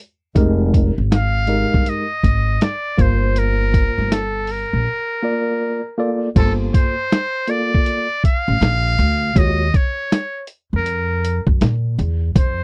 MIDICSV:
0, 0, Header, 1, 5, 480
1, 0, Start_track
1, 0, Tempo, 750000
1, 230, Time_signature, 4, 2, 24, 8
1, 8088, End_track
2, 0, Start_track
2, 0, Title_t, "Muted trumpet"
2, 0, Program_c, 0, 59
2, 729, Note_on_c, 0, 77, 108
2, 1210, Note_on_c, 0, 75, 92
2, 1220, Note_off_c, 0, 77, 0
2, 1688, Note_on_c, 0, 74, 95
2, 1697, Note_off_c, 0, 75, 0
2, 1928, Note_on_c, 0, 72, 84
2, 1938, Note_off_c, 0, 74, 0
2, 2168, Note_on_c, 0, 70, 98
2, 2178, Note_off_c, 0, 72, 0
2, 2645, Note_on_c, 0, 69, 83
2, 2654, Note_off_c, 0, 70, 0
2, 2889, Note_on_c, 0, 70, 84
2, 2898, Note_off_c, 0, 69, 0
2, 3840, Note_off_c, 0, 70, 0
2, 4080, Note_on_c, 0, 69, 94
2, 4182, Note_off_c, 0, 69, 0
2, 4321, Note_on_c, 0, 72, 97
2, 4802, Note_on_c, 0, 74, 105
2, 4811, Note_off_c, 0, 72, 0
2, 5276, Note_off_c, 0, 74, 0
2, 5284, Note_on_c, 0, 77, 120
2, 6005, Note_on_c, 0, 75, 105
2, 6014, Note_off_c, 0, 77, 0
2, 6247, Note_on_c, 0, 73, 100
2, 6256, Note_off_c, 0, 75, 0
2, 6682, Note_off_c, 0, 73, 0
2, 6887, Note_on_c, 0, 70, 79
2, 7331, Note_off_c, 0, 70, 0
2, 7927, Note_on_c, 0, 72, 105
2, 8088, Note_off_c, 0, 72, 0
2, 8088, End_track
3, 0, Start_track
3, 0, Title_t, "Tine electric piano"
3, 0, Program_c, 1, 4
3, 225, Note_on_c, 1, 56, 84
3, 229, Note_on_c, 1, 63, 74
3, 233, Note_on_c, 1, 67, 72
3, 239, Note_on_c, 1, 70, 96
3, 593, Note_off_c, 1, 56, 0
3, 595, Note_off_c, 1, 63, 0
3, 597, Note_off_c, 1, 67, 0
3, 600, Note_off_c, 1, 70, 0
3, 943, Note_on_c, 1, 56, 68
3, 948, Note_on_c, 1, 63, 60
3, 951, Note_on_c, 1, 67, 62
3, 956, Note_on_c, 1, 70, 74
3, 1312, Note_off_c, 1, 56, 0
3, 1314, Note_off_c, 1, 63, 0
3, 1316, Note_off_c, 1, 67, 0
3, 1318, Note_off_c, 1, 70, 0
3, 1904, Note_on_c, 1, 58, 72
3, 1909, Note_on_c, 1, 65, 68
3, 1912, Note_on_c, 1, 70, 68
3, 1918, Note_on_c, 1, 72, 83
3, 2690, Note_off_c, 1, 58, 0
3, 2692, Note_off_c, 1, 65, 0
3, 2694, Note_off_c, 1, 70, 0
3, 2697, Note_off_c, 1, 72, 0
3, 3344, Note_on_c, 1, 58, 73
3, 3348, Note_on_c, 1, 65, 66
3, 3353, Note_on_c, 1, 70, 64
3, 3357, Note_on_c, 1, 74, 76
3, 3712, Note_off_c, 1, 58, 0
3, 3715, Note_off_c, 1, 65, 0
3, 3717, Note_off_c, 1, 70, 0
3, 3719, Note_off_c, 1, 74, 0
3, 3825, Note_on_c, 1, 58, 90
3, 3830, Note_on_c, 1, 65, 79
3, 3833, Note_on_c, 1, 69, 78
3, 3838, Note_on_c, 1, 74, 93
3, 4018, Note_off_c, 1, 58, 0
3, 4020, Note_off_c, 1, 65, 0
3, 4022, Note_off_c, 1, 69, 0
3, 4024, Note_off_c, 1, 74, 0
3, 4064, Note_on_c, 1, 57, 48
3, 4070, Note_on_c, 1, 65, 54
3, 4075, Note_on_c, 1, 69, 56
3, 4078, Note_on_c, 1, 72, 66
3, 4107, Note_on_c, 1, 58, 61
3, 4122, Note_off_c, 1, 57, 0
3, 4435, Note_off_c, 1, 65, 0
3, 4438, Note_off_c, 1, 69, 0
3, 4440, Note_off_c, 1, 72, 0
3, 4454, Note_off_c, 1, 58, 0
3, 4784, Note_on_c, 1, 58, 73
3, 4789, Note_on_c, 1, 65, 67
3, 4794, Note_on_c, 1, 69, 66
3, 4798, Note_on_c, 1, 74, 85
3, 5152, Note_off_c, 1, 58, 0
3, 5155, Note_off_c, 1, 65, 0
3, 5157, Note_off_c, 1, 69, 0
3, 5159, Note_off_c, 1, 74, 0
3, 5984, Note_on_c, 1, 56, 59
3, 5988, Note_on_c, 1, 65, 59
3, 5993, Note_on_c, 1, 66, 58
3, 5998, Note_on_c, 1, 73, 73
3, 6177, Note_off_c, 1, 56, 0
3, 6179, Note_off_c, 1, 65, 0
3, 6182, Note_off_c, 1, 66, 0
3, 6184, Note_off_c, 1, 73, 0
3, 8088, End_track
4, 0, Start_track
4, 0, Title_t, "Upright bass"
4, 0, Program_c, 2, 32
4, 229, Note_on_c, 2, 29, 98
4, 575, Note_off_c, 2, 29, 0
4, 626, Note_on_c, 2, 32, 89
4, 1045, Note_off_c, 2, 32, 0
4, 1115, Note_on_c, 2, 31, 80
4, 1184, Note_off_c, 2, 31, 0
4, 1431, Note_on_c, 2, 32, 88
4, 1640, Note_off_c, 2, 32, 0
4, 1910, Note_on_c, 2, 31, 100
4, 2465, Note_off_c, 2, 31, 0
4, 2547, Note_on_c, 2, 31, 77
4, 2966, Note_off_c, 2, 31, 0
4, 3029, Note_on_c, 2, 34, 80
4, 3101, Note_off_c, 2, 34, 0
4, 4070, Note_on_c, 2, 31, 96
4, 4280, Note_off_c, 2, 31, 0
4, 5427, Note_on_c, 2, 33, 90
4, 5500, Note_off_c, 2, 33, 0
4, 5510, Note_on_c, 2, 34, 98
4, 5720, Note_off_c, 2, 34, 0
4, 5750, Note_on_c, 2, 38, 109
4, 5960, Note_off_c, 2, 38, 0
4, 5989, Note_on_c, 2, 39, 96
4, 6199, Note_off_c, 2, 39, 0
4, 6867, Note_on_c, 2, 41, 85
4, 7286, Note_off_c, 2, 41, 0
4, 7340, Note_on_c, 2, 42, 92
4, 7416, Note_off_c, 2, 42, 0
4, 7431, Note_on_c, 2, 46, 93
4, 7640, Note_off_c, 2, 46, 0
4, 7670, Note_on_c, 2, 40, 98
4, 7880, Note_off_c, 2, 40, 0
4, 7908, Note_on_c, 2, 41, 104
4, 8088, Note_off_c, 2, 41, 0
4, 8088, End_track
5, 0, Start_track
5, 0, Title_t, "Drums"
5, 228, Note_on_c, 9, 36, 107
5, 230, Note_on_c, 9, 42, 95
5, 292, Note_off_c, 9, 36, 0
5, 294, Note_off_c, 9, 42, 0
5, 473, Note_on_c, 9, 36, 95
5, 476, Note_on_c, 9, 42, 72
5, 537, Note_off_c, 9, 36, 0
5, 540, Note_off_c, 9, 42, 0
5, 716, Note_on_c, 9, 38, 100
5, 717, Note_on_c, 9, 42, 99
5, 780, Note_off_c, 9, 38, 0
5, 781, Note_off_c, 9, 42, 0
5, 942, Note_on_c, 9, 42, 75
5, 1006, Note_off_c, 9, 42, 0
5, 1115, Note_on_c, 9, 36, 80
5, 1179, Note_off_c, 9, 36, 0
5, 1192, Note_on_c, 9, 42, 78
5, 1256, Note_off_c, 9, 42, 0
5, 1430, Note_on_c, 9, 36, 85
5, 1436, Note_on_c, 9, 42, 78
5, 1494, Note_off_c, 9, 36, 0
5, 1500, Note_off_c, 9, 42, 0
5, 1672, Note_on_c, 9, 42, 80
5, 1677, Note_on_c, 9, 38, 103
5, 1736, Note_off_c, 9, 42, 0
5, 1741, Note_off_c, 9, 38, 0
5, 1910, Note_on_c, 9, 36, 96
5, 1914, Note_on_c, 9, 42, 72
5, 1974, Note_off_c, 9, 36, 0
5, 1978, Note_off_c, 9, 42, 0
5, 2150, Note_on_c, 9, 42, 93
5, 2214, Note_off_c, 9, 42, 0
5, 2393, Note_on_c, 9, 36, 95
5, 2394, Note_on_c, 9, 42, 72
5, 2457, Note_off_c, 9, 36, 0
5, 2458, Note_off_c, 9, 42, 0
5, 2549, Note_on_c, 9, 38, 36
5, 2613, Note_off_c, 9, 38, 0
5, 2636, Note_on_c, 9, 38, 97
5, 2637, Note_on_c, 9, 42, 104
5, 2700, Note_off_c, 9, 38, 0
5, 2701, Note_off_c, 9, 42, 0
5, 2863, Note_on_c, 9, 46, 54
5, 2927, Note_off_c, 9, 46, 0
5, 4071, Note_on_c, 9, 36, 110
5, 4072, Note_on_c, 9, 42, 97
5, 4072, Note_on_c, 9, 49, 92
5, 4135, Note_off_c, 9, 36, 0
5, 4136, Note_off_c, 9, 42, 0
5, 4136, Note_off_c, 9, 49, 0
5, 4314, Note_on_c, 9, 36, 102
5, 4317, Note_on_c, 9, 42, 77
5, 4378, Note_off_c, 9, 36, 0
5, 4381, Note_off_c, 9, 42, 0
5, 4559, Note_on_c, 9, 38, 104
5, 4560, Note_on_c, 9, 42, 102
5, 4623, Note_off_c, 9, 38, 0
5, 4624, Note_off_c, 9, 42, 0
5, 4783, Note_on_c, 9, 42, 75
5, 4847, Note_off_c, 9, 42, 0
5, 4957, Note_on_c, 9, 36, 85
5, 5021, Note_off_c, 9, 36, 0
5, 5032, Note_on_c, 9, 42, 80
5, 5096, Note_off_c, 9, 42, 0
5, 5272, Note_on_c, 9, 36, 84
5, 5279, Note_on_c, 9, 42, 78
5, 5336, Note_off_c, 9, 36, 0
5, 5343, Note_off_c, 9, 42, 0
5, 5515, Note_on_c, 9, 42, 77
5, 5521, Note_on_c, 9, 38, 102
5, 5579, Note_off_c, 9, 42, 0
5, 5585, Note_off_c, 9, 38, 0
5, 5758, Note_on_c, 9, 42, 68
5, 5822, Note_off_c, 9, 42, 0
5, 5990, Note_on_c, 9, 36, 116
5, 5992, Note_on_c, 9, 42, 96
5, 6054, Note_off_c, 9, 36, 0
5, 6056, Note_off_c, 9, 42, 0
5, 6234, Note_on_c, 9, 36, 99
5, 6236, Note_on_c, 9, 42, 74
5, 6298, Note_off_c, 9, 36, 0
5, 6300, Note_off_c, 9, 42, 0
5, 6479, Note_on_c, 9, 38, 102
5, 6480, Note_on_c, 9, 42, 104
5, 6543, Note_off_c, 9, 38, 0
5, 6544, Note_off_c, 9, 42, 0
5, 6703, Note_on_c, 9, 42, 73
5, 6767, Note_off_c, 9, 42, 0
5, 6951, Note_on_c, 9, 42, 79
5, 7015, Note_off_c, 9, 42, 0
5, 7197, Note_on_c, 9, 42, 86
5, 7261, Note_off_c, 9, 42, 0
5, 7339, Note_on_c, 9, 36, 88
5, 7403, Note_off_c, 9, 36, 0
5, 7431, Note_on_c, 9, 42, 83
5, 7436, Note_on_c, 9, 38, 97
5, 7495, Note_off_c, 9, 42, 0
5, 7500, Note_off_c, 9, 38, 0
5, 7674, Note_on_c, 9, 42, 71
5, 7738, Note_off_c, 9, 42, 0
5, 7908, Note_on_c, 9, 36, 116
5, 7909, Note_on_c, 9, 42, 96
5, 7972, Note_off_c, 9, 36, 0
5, 7973, Note_off_c, 9, 42, 0
5, 8088, End_track
0, 0, End_of_file